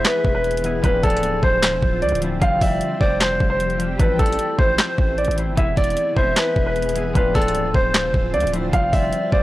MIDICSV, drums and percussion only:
0, 0, Header, 1, 2, 480
1, 0, Start_track
1, 0, Tempo, 394737
1, 1018, Time_signature, 4, 2, 24, 8
1, 11466, End_track
2, 0, Start_track
2, 0, Title_t, "Drums"
2, 56, Note_on_c, 9, 42, 83
2, 58, Note_on_c, 9, 38, 106
2, 65, Note_on_c, 9, 39, 87
2, 178, Note_off_c, 9, 42, 0
2, 179, Note_off_c, 9, 38, 0
2, 187, Note_off_c, 9, 39, 0
2, 298, Note_on_c, 9, 36, 93
2, 420, Note_off_c, 9, 36, 0
2, 538, Note_on_c, 9, 42, 49
2, 618, Note_off_c, 9, 42, 0
2, 618, Note_on_c, 9, 42, 67
2, 698, Note_off_c, 9, 42, 0
2, 698, Note_on_c, 9, 42, 77
2, 778, Note_off_c, 9, 42, 0
2, 778, Note_on_c, 9, 42, 85
2, 900, Note_off_c, 9, 42, 0
2, 1018, Note_on_c, 9, 36, 111
2, 1018, Note_on_c, 9, 42, 85
2, 1139, Note_off_c, 9, 42, 0
2, 1140, Note_off_c, 9, 36, 0
2, 1257, Note_on_c, 9, 42, 66
2, 1258, Note_on_c, 9, 36, 97
2, 1337, Note_off_c, 9, 42, 0
2, 1337, Note_on_c, 9, 42, 63
2, 1380, Note_off_c, 9, 36, 0
2, 1418, Note_off_c, 9, 42, 0
2, 1418, Note_on_c, 9, 42, 64
2, 1496, Note_off_c, 9, 42, 0
2, 1496, Note_on_c, 9, 42, 80
2, 1618, Note_off_c, 9, 42, 0
2, 1737, Note_on_c, 9, 36, 101
2, 1858, Note_off_c, 9, 36, 0
2, 1977, Note_on_c, 9, 42, 88
2, 1978, Note_on_c, 9, 38, 112
2, 1985, Note_on_c, 9, 39, 90
2, 2098, Note_off_c, 9, 42, 0
2, 2100, Note_off_c, 9, 38, 0
2, 2107, Note_off_c, 9, 39, 0
2, 2218, Note_on_c, 9, 36, 96
2, 2340, Note_off_c, 9, 36, 0
2, 2458, Note_on_c, 9, 42, 49
2, 2538, Note_off_c, 9, 42, 0
2, 2538, Note_on_c, 9, 42, 65
2, 2618, Note_off_c, 9, 42, 0
2, 2618, Note_on_c, 9, 42, 79
2, 2697, Note_off_c, 9, 42, 0
2, 2697, Note_on_c, 9, 42, 88
2, 2819, Note_off_c, 9, 42, 0
2, 2938, Note_on_c, 9, 36, 109
2, 2938, Note_on_c, 9, 42, 85
2, 3059, Note_off_c, 9, 36, 0
2, 3059, Note_off_c, 9, 42, 0
2, 3178, Note_on_c, 9, 36, 98
2, 3178, Note_on_c, 9, 46, 84
2, 3300, Note_off_c, 9, 36, 0
2, 3300, Note_off_c, 9, 46, 0
2, 3415, Note_on_c, 9, 42, 80
2, 3537, Note_off_c, 9, 42, 0
2, 3657, Note_on_c, 9, 36, 99
2, 3778, Note_off_c, 9, 36, 0
2, 3897, Note_on_c, 9, 42, 88
2, 3898, Note_on_c, 9, 38, 110
2, 3905, Note_on_c, 9, 39, 86
2, 4018, Note_off_c, 9, 42, 0
2, 4019, Note_off_c, 9, 38, 0
2, 4027, Note_off_c, 9, 39, 0
2, 4138, Note_on_c, 9, 36, 94
2, 4260, Note_off_c, 9, 36, 0
2, 4378, Note_on_c, 9, 42, 77
2, 4498, Note_off_c, 9, 42, 0
2, 4498, Note_on_c, 9, 42, 46
2, 4618, Note_off_c, 9, 42, 0
2, 4618, Note_on_c, 9, 42, 86
2, 4739, Note_off_c, 9, 42, 0
2, 4858, Note_on_c, 9, 36, 114
2, 4858, Note_on_c, 9, 42, 86
2, 4980, Note_off_c, 9, 36, 0
2, 4980, Note_off_c, 9, 42, 0
2, 5098, Note_on_c, 9, 42, 64
2, 5099, Note_on_c, 9, 36, 100
2, 5179, Note_off_c, 9, 42, 0
2, 5179, Note_on_c, 9, 42, 62
2, 5220, Note_off_c, 9, 36, 0
2, 5259, Note_off_c, 9, 42, 0
2, 5259, Note_on_c, 9, 42, 64
2, 5337, Note_off_c, 9, 42, 0
2, 5337, Note_on_c, 9, 42, 79
2, 5458, Note_off_c, 9, 42, 0
2, 5577, Note_on_c, 9, 36, 98
2, 5699, Note_off_c, 9, 36, 0
2, 5817, Note_on_c, 9, 42, 86
2, 5819, Note_on_c, 9, 38, 112
2, 5826, Note_on_c, 9, 39, 89
2, 5939, Note_off_c, 9, 42, 0
2, 5940, Note_off_c, 9, 38, 0
2, 5948, Note_off_c, 9, 39, 0
2, 6059, Note_on_c, 9, 36, 97
2, 6180, Note_off_c, 9, 36, 0
2, 6299, Note_on_c, 9, 42, 49
2, 6379, Note_off_c, 9, 42, 0
2, 6379, Note_on_c, 9, 42, 63
2, 6459, Note_off_c, 9, 42, 0
2, 6459, Note_on_c, 9, 42, 77
2, 6539, Note_off_c, 9, 42, 0
2, 6539, Note_on_c, 9, 42, 88
2, 6660, Note_off_c, 9, 42, 0
2, 6779, Note_on_c, 9, 36, 116
2, 6779, Note_on_c, 9, 42, 84
2, 6900, Note_off_c, 9, 36, 0
2, 6901, Note_off_c, 9, 42, 0
2, 7019, Note_on_c, 9, 36, 97
2, 7019, Note_on_c, 9, 42, 65
2, 7099, Note_off_c, 9, 42, 0
2, 7099, Note_on_c, 9, 42, 64
2, 7141, Note_off_c, 9, 36, 0
2, 7179, Note_off_c, 9, 42, 0
2, 7179, Note_on_c, 9, 42, 64
2, 7256, Note_off_c, 9, 42, 0
2, 7256, Note_on_c, 9, 42, 79
2, 7378, Note_off_c, 9, 42, 0
2, 7497, Note_on_c, 9, 36, 97
2, 7619, Note_off_c, 9, 36, 0
2, 7737, Note_on_c, 9, 42, 85
2, 7738, Note_on_c, 9, 38, 108
2, 7745, Note_on_c, 9, 39, 89
2, 7858, Note_off_c, 9, 42, 0
2, 7860, Note_off_c, 9, 38, 0
2, 7867, Note_off_c, 9, 39, 0
2, 7978, Note_on_c, 9, 36, 94
2, 8100, Note_off_c, 9, 36, 0
2, 8218, Note_on_c, 9, 42, 50
2, 8298, Note_off_c, 9, 42, 0
2, 8298, Note_on_c, 9, 42, 65
2, 8378, Note_off_c, 9, 42, 0
2, 8378, Note_on_c, 9, 42, 81
2, 8458, Note_off_c, 9, 42, 0
2, 8458, Note_on_c, 9, 42, 87
2, 8579, Note_off_c, 9, 42, 0
2, 8698, Note_on_c, 9, 36, 113
2, 8698, Note_on_c, 9, 42, 85
2, 8820, Note_off_c, 9, 36, 0
2, 8820, Note_off_c, 9, 42, 0
2, 8938, Note_on_c, 9, 42, 63
2, 8939, Note_on_c, 9, 36, 94
2, 9018, Note_off_c, 9, 42, 0
2, 9018, Note_on_c, 9, 42, 64
2, 9060, Note_off_c, 9, 36, 0
2, 9098, Note_off_c, 9, 42, 0
2, 9098, Note_on_c, 9, 42, 64
2, 9176, Note_off_c, 9, 42, 0
2, 9176, Note_on_c, 9, 42, 80
2, 9298, Note_off_c, 9, 42, 0
2, 9417, Note_on_c, 9, 36, 103
2, 9539, Note_off_c, 9, 36, 0
2, 9658, Note_on_c, 9, 42, 86
2, 9659, Note_on_c, 9, 38, 109
2, 9666, Note_on_c, 9, 39, 87
2, 9779, Note_off_c, 9, 42, 0
2, 9781, Note_off_c, 9, 38, 0
2, 9788, Note_off_c, 9, 39, 0
2, 9899, Note_on_c, 9, 36, 97
2, 10020, Note_off_c, 9, 36, 0
2, 10139, Note_on_c, 9, 42, 49
2, 10219, Note_off_c, 9, 42, 0
2, 10219, Note_on_c, 9, 42, 65
2, 10299, Note_off_c, 9, 42, 0
2, 10299, Note_on_c, 9, 42, 81
2, 10379, Note_off_c, 9, 42, 0
2, 10379, Note_on_c, 9, 42, 87
2, 10500, Note_off_c, 9, 42, 0
2, 10618, Note_on_c, 9, 36, 110
2, 10619, Note_on_c, 9, 42, 82
2, 10740, Note_off_c, 9, 36, 0
2, 10740, Note_off_c, 9, 42, 0
2, 10859, Note_on_c, 9, 36, 100
2, 10859, Note_on_c, 9, 46, 83
2, 10981, Note_off_c, 9, 36, 0
2, 10981, Note_off_c, 9, 46, 0
2, 11096, Note_on_c, 9, 42, 78
2, 11218, Note_off_c, 9, 42, 0
2, 11337, Note_on_c, 9, 36, 97
2, 11459, Note_off_c, 9, 36, 0
2, 11466, End_track
0, 0, End_of_file